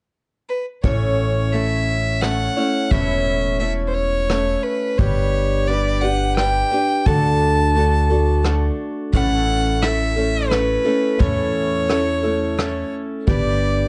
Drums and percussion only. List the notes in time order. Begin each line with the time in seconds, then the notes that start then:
0.84 kick
2.22 cross-stick
2.91 kick
4.30 cross-stick
4.99 kick
6.37 cross-stick
7.06 kick
8.45 cross-stick
9.13 kick, closed hi-hat
9.83 cross-stick, closed hi-hat
10.51 cross-stick, closed hi-hat
11.20 kick, closed hi-hat
11.90 cross-stick, closed hi-hat
12.59 cross-stick, closed hi-hat
13.28 kick, closed hi-hat